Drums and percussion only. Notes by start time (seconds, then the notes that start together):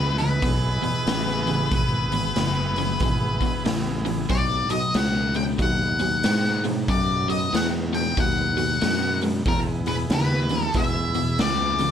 0.18 open hi-hat
0.42 kick, open hi-hat
0.83 open hi-hat
1.07 snare, open hi-hat
1.28 snare
1.47 open hi-hat
1.72 kick, open hi-hat
2.12 open hi-hat
2.36 snare, open hi-hat
2.76 open hi-hat
3.00 kick, open hi-hat
3.41 kick, open hi-hat
3.65 snare, open hi-hat
4.06 open hi-hat
4.30 kick, open hi-hat
4.70 open hi-hat
4.94 snare, open hi-hat
5.34 open hi-hat
5.59 kick, open hi-hat
5.99 open hi-hat
6.23 snare, open hi-hat
6.45 snare
6.64 open hi-hat
6.88 kick, open hi-hat
7.30 open hi-hat
7.54 snare, open hi-hat
7.94 open hi-hat
8.17 kick, open hi-hat
8.58 open hi-hat
8.81 snare, open hi-hat
9.21 open hi-hat
9.46 kick, open hi-hat
9.86 open hi-hat
10.10 snare, open hi-hat
10.49 open hi-hat
10.74 kick, open hi-hat
11.14 open hi-hat
11.39 snare, open hi-hat
11.78 open hi-hat